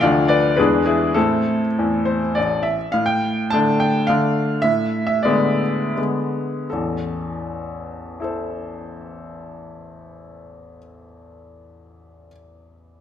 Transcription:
0.01 D2 F3 A3 D4 D5 F5
0.28 B4 D5
0.57 E2 E3 G#3 D4 G#4 B4
0.86 E4 G#4
1.14 A2 A3 C4 E4 A4
1.79 E2
2.05 C5
2.35 A1 D5
2.63 E5
2.92 A2 F5
3.06 G5
3.50 D3 A3 D4 A5
3.80 G5
4.07 D3 A3 D4 F5
4.62 A2 E5
5.07 E5
5.23 D3 G#3 B3 D5
5.97 D3 G#3 B3
6.70 A1 E2 A4
8.20 E4 A4 C5

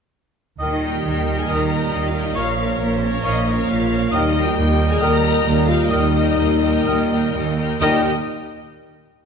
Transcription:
0.59 D#2 A#2 D#3 G3 D#4 A#4 D#5 G5
0.82 A#3 A#4 D#5 G5
0.94 G4 G5
1.04 D#2 D#3 G4 G5
1.27 A#3 A#4 D#5 G5
1.38 G#4 G#5
1.48 D#2 D#3 A#4 D#5 G5 A#5
1.70 A#3 A#4 D#5 G5
1.92 D#2 D#3 D#4 D#5
2.08 F4 F5
2.13 A#3 A#4 D#5 G5
2.23 D#4 D#5
2.35 A#1 A#2 F3 A#3 F4 A#4 C#5 F5
2.58 A#3 A#4 C#5 F5
2.80 A#1 A#2 A#3 A#4
2.95 C4 C5
3.02 A#3 A#4 C#5 F5
3.10 C#4 C#5
3.24 A#1 A#2 D#4 A#4 C#5 D#5 F5
3.47 A#3 A#4 C#5 F5
3.55 C#4 C#5
3.68 A#1 A#2 F4 F5
3.90 A#3 A#4 C#5 F5
4.11 D#2 A#2 G3 D#4 A#4 D#5 G5
4.33 A#3 A#4 D#5 G5
4.45 G4 G5
4.56 D#2 G4 G5
4.77 A#3 A#4 D#5 G5
4.90 G#4 G#5
5.00 D#2 A#4 D#5 G5 A#5
5.22 A#3 A#4 D#5 G5
5.46 D#2
5.68 A#3 F4 A#4 D#5 F5 G5
5.91 D#2 D#4 A#4 D#5 G5
6.15 A#3 A#4 D#5 G5
6.39 D#2
6.61 A#3 A#4 D#5 G5
6.85 D#2 A#4 D#5 G5
7.09 A#3 A#4 D#5 G5
7.34 D#2
7.58 A#3 A#4 D#5 G5
7.80 D#2 A#2 G3 D#4 G4 A#4 D#5 G5

